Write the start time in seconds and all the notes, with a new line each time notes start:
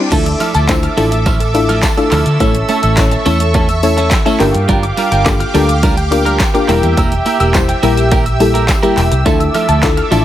Already playing: reverse cymbal
0.11 D2 F3 A3 D4 E4 F4 A4 E5 A5 D6 E6, kick, closed hi-hat, crash, tambourine, shaker
0.26 E6, closed hi-hat, shaker
0.40 F3 A3 E4 A4 F6, open hi-hat, shaker
0.54 D2 F3 A3 E4 A4 A5, closed hi-hat, tambourine, shaker
0.68 A3 D4 E4 F4 C5 E6, muted clean electric guitar stroke, kick, snare, clap, closed hi-hat, tambourine, shaker
0.83 F6, muted clean electric guitar stroke, closed hi-hat, shaker
0.97 A1 F3 A3 D4 E4 F4 A4 A5, open hi-hat, tambourine, shaker
1.12 E6, muted clean electric guitar stroke, closed hi-hat, tambourine, shaker
1.26 F3 A3 E4 A4 F6, kick, closed hi-hat, tambourine, shaker
1.40 A5, muted clean electric guitar stroke, closed hi-hat, tambourine, shaker
1.54 A3 D4 E4 F4 A4 E6, muted clean electric guitar stroke, open hi-hat, tambourine, shaker
1.69 F3 A3 E4 A4 F6, closed hi-hat, tambourine, shaker
1.83 A5, muted clean electric guitar stroke, kick, snare, clap, closed hi-hat, tambourine, shaker
1.97 A3 D4 E4 F4 A4 E6, muted clean electric guitar stroke, closed hi-hat, tambourine, shaker
2.11 D2 F3 A3 E4 A4 F6, clap, open hi-hat, tambourine, shaker
2.26 D3 F3 A3 E4 A4, closed hi-hat, shaker
2.40 A1 A3 C#4 E4 A4 C#5 E5 C#6 E6, kick, closed hi-hat, tambourine, shaker
2.55 E7, closed hi-hat, shaker
2.69 A3 C#4 E4 A4 A5, open hi-hat, shaker
2.83 A1 A3 C#4 E4 A4 E6, closed hi-hat, tambourine, shaker
2.97 A3 C#4 E4 A4 C#5 E7, muted clean electric guitar stroke, kick, snare, clap, closed hi-hat, tambourine, shaker
3.11 A5, muted clean electric guitar stroke, closed hi-hat, shaker
3.26 E2 A3 C#4 E4 A4 C#5 E6, open hi-hat, tambourine, shaker
3.40 E7, muted clean electric guitar stroke, closed hi-hat, shaker
3.54 A3 C#4 E4 A4 A5, kick, closed hi-hat, tambourine, shaker
3.69 E6, muted clean electric guitar stroke, closed hi-hat, tambourine, shaker
3.83 A3 C#4 E4 A4 C#5 E7, muted clean electric guitar stroke, open hi-hat, tambourine, shaker
3.97 A3 C#4 E4 A4, closed hi-hat, tambourine, shaker
4.11 E6, muted clean electric guitar stroke, kick, snare, clap, closed hi-hat, tambourine, shaker
4.26 A3 C#4 E4 A4 E5 E7, closed hi-hat, tambourine, shaker
4.40 G1 A#3 D4 F4 G4 A#4 F5 G5 D6, clap, open hi-hat, tambourine, shaker
4.54 G2, muted clean electric guitar stroke, closed hi-hat, shaker
4.68 G1 G3 D4 F4 A#4 G5, kick, closed hi-hat, tambourine, shaker
4.83 D6, closed hi-hat, shaker
4.97 G3 D4 F4 A#4 F6, open hi-hat, shaker
5.11 G1 G3 D4 F4 A#4 G5, closed hi-hat, shaker
5.26 A#3 D4 F4 G4 A4 D6, kick, snare, clap, closed hi-hat, tambourine, shaker
5.40 F6, muted clean electric guitar stroke, closed hi-hat, shaker
5.54 D2 G3 A#3 D4 F4 G4 A4 A#4 G5, open hi-hat, tambourine, shaker
5.68 D6, muted clean electric guitar stroke, closed hi-hat, shaker
5.83 G3 D4 F4 A#4 F6, kick, closed hi-hat, tambourine, shaker
5.97 G5, muted clean electric guitar stroke, closed hi-hat, tambourine, shaker
6.11 A#3 D4 F4 G4 A#4 D6, muted clean electric guitar stroke, open hi-hat, tambourine, shaker
6.25 G3 D4 F4 A#4 F6, closed hi-hat, shaker
6.40 G5, kick, snare, clap, closed hi-hat, tambourine, shaker
6.54 A#3 D4 F4 G4 A#4 D6, muted clean electric guitar stroke, closed hi-hat, tambourine, shaker
6.68 E1 G3 A#3 E4 G4 A#4 E5 E6 E7, clap, open hi-hat, tambourine, shaker
6.83 E2 A#3 E4 G4 A#4, closed hi-hat, shaker
6.97 E1 A#3 E4 G4 A#4 E6, kick, closed hi-hat, tambourine, shaker
7.12 E7, closed hi-hat, shaker
7.26 A#3 E4 G4 A#4 G5, open hi-hat, shaker
7.40 E1 A#3 E4 G4 A#4 E6, closed hi-hat, tambourine, shaker
7.54 G3 A#3 E4 G4 C5 E7, muted clean electric guitar stroke, kick, snare, clap, closed hi-hat, tambourine, shaker
7.68 G5, muted clean electric guitar stroke, closed hi-hat, shaker
7.83 A#1 G3 A#3 E4 G4 A#4 E6, open hi-hat, tambourine, shaker
7.97 E7, muted clean electric guitar stroke, closed hi-hat, tambourine, shaker
8.11 A#3 E4 G4 A#4 G5, kick, closed hi-hat, tambourine, shaker
8.26 E6, muted clean electric guitar stroke, closed hi-hat, tambourine, shaker
8.40 G3 A#3 E4 G4 A4 E7, muted clean electric guitar stroke, open hi-hat, tambourine, shaker
8.54 A#3 E4 G4 A#4, closed hi-hat, tambourine, shaker
8.68 E6, muted clean electric guitar stroke, kick, snare, clap, closed hi-hat, tambourine, shaker
8.83 G3 A#3 E4 G4 A#4 E7, closed hi-hat, tambourine, shaker
8.97 E1 G5, muted clean electric guitar stroke, clap, open hi-hat, tambourine, shaker
9.11 C2, muted clean electric guitar stroke, closed hi-hat, shaker
9.26 D2 F3 A3 D4 E4 F4 A4 E5 A5 D6, kick, closed hi-hat, tambourine, shaker
9.40 E6, closed hi-hat, shaker
9.54 F3 A3 E4 A4 F6, open hi-hat, shaker
9.68 D2 F3 A3 E4 A4 A5, closed hi-hat, shaker
9.83 A3 D4 E4 F4 A4 E6, kick, snare, clap, closed hi-hat, tambourine, shaker
9.97 F6, muted clean electric guitar stroke, closed hi-hat, shaker
10.11 A1 F3 A3 D4 E4 F4 A4 A5, open hi-hat, tambourine, shaker